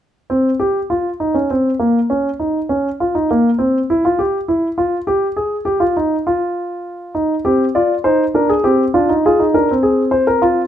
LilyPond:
\new Staff \with { instrumentName = "Grand piano" } { \time 12/8 \key c \phrygian \tempo 4. = 67 << { r8 c'8 g'8 f'8 ees'16 des'16 c'8 bes8 des'8 ees'8 des'8 f'16 ees'16 bes8 | c'8 e'16 f'16 g'8 e'8 f'8 g'8 aes'8 g'16 f'16 ees'8 f'4. | r8 g'8 d''8 c''8 bes'16 aes'16 g'8 f'8 aes'8 bes'8 aes'8 c''16 bes'16 f'8 | } \\ { r1. | r1. | ees'8 c'8 f'8 ees'8 d'8 c'8 d'16 ees'16 f'16 ees'16 d'16 c'4.~ c'16 | } >> }